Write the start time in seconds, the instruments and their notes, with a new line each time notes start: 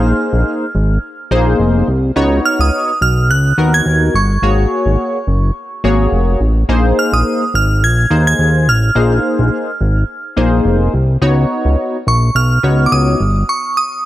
Already playing: analog synth bass A#1, analog polysynth A#3 D#4 G#4 C5, synth bell F6
0.33 analog synth bass A#1
0.75 analog synth bass G#1
1.31 analog synth bass A#1, analog polysynth A#3 D#4 G#4 C5
1.60 analog synth bass F1
1.88 analog synth bass C2
2.16 analog synth bass C#2, analog polysynth B3 D#4 F#4 C#5
2.45 synth bell F6
2.59 analog synth bass C#2, synth bell D#6
3.01 analog synth bass B1, synth bell F6
3.29 analog synth bass C#2, synth bell F#6
3.58 analog synth bass D#2, analog polysynth B3 D#4 F#4 A#4
3.74 synth bell G#6
3.86 analog synth bass D#2
4.14 analog synth bass G1, synth bell C#6
4.42 analog synth bass G#1, analog polysynth A#3 F#4 G#4 C#5
4.86 analog synth bass G#1
5.27 analog synth bass F#1
5.84 analog synth bass G#1, analog polysynth A#3 F#4 G#4 C#5
6.12 analog synth bass F1
6.40 analog synth bass A1
6.69 analog synth bass A#1, analog polysynth A#3 D#4 G#4 C5
6.99 synth bell F6
7.13 analog synth bass A#1, synth bell D#6
7.54 analog synth bass G#1, synth bell F6
7.83 analog synth bass A#1, synth bell G#6
8.10 analog synth bass D#2, analog polysynth A#3 D#4 G#4 C5
8.27 synth bell G#6
8.39 analog synth bass D#2
8.67 analog synth bass A1, synth bell F6
8.95 analog synth bass A#1, analog polysynth A#3 D#4 G#4 C5
9.39 analog synth bass A#1
9.81 analog synth bass G#1
10.37 analog synth bass A#1, analog polysynth A#3 D#4 G#4 C5
10.65 analog synth bass F1
10.94 analog synth bass C2
11.22 analog synth bass C#2, analog polysynth B3 D#4 F#4 C#5
11.65 analog synth bass C#2
12.07 analog synth bass A#1, synth bell C#6
12.35 analog synth bass B1, synth bell F6
12.63 analog synth bass C#2, analog polysynth B3 D#4 F#4 C#5
12.86 synth bell D6
12.92 analog synth bass C#2, synth bell D#6
13.20 analog synth bass G1
13.49 synth bell C#6
13.77 synth bell D#6